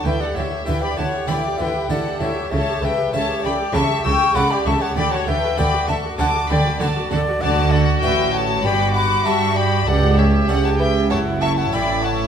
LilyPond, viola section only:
\new Staff \with { instrumentName = "Viola section" } { \time 4/4 \key d \major \tempo 4 = 98 e'16 g'16 e'16 g'16 e'16 g'16 e'16 g'16 e'16 g'16 e'16 g'16 e'16 g'16 e'16 g'16 | a'16 g'16 a'16 g'16 a'16 g'16 a'16 g'16 a'16 g'16 a'16 g'16 a'16 g'16 a'16 g'16 | a'16 fis'16 a'16 fis'16 a'16 fis'16 a'16 fis'16 a'16 fis'16 a'16 fis'16 a'16 fis'16 a'16 fis'16 | fis'2 fis'2 |
g'2 e'2 | }